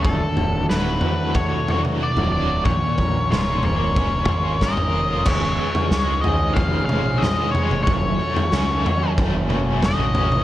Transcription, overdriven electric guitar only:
0.05 D2
0.70 F#3
1.03 A2
1.35 D3
1.68 F#3
2.00 F#4
2.33 F#3
2.67 A#2
3.31 F4
3.64 A#3
3.97 C#4
4.29 F4
4.62 A#4
4.94 F4
5.27 C#2
5.60 C#3
5.92 G#3
6.24 G#2
6.56 C#3
6.89 G#3
7.23 F4
7.55 G#3
7.87 F#2
8.19 A3
8.51 C#4
8.83 F#3
9.16 A3
9.49 C#4
9.82 F#4
10.14 C#4

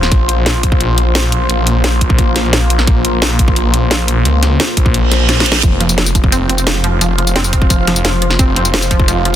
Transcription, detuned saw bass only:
Already playing: D#1
0.12 A#1
1.50 A#1
2.87 A#1
4.25 C#2
4.77 A#1
5.63 F1
7.01 F1
8.39 F1

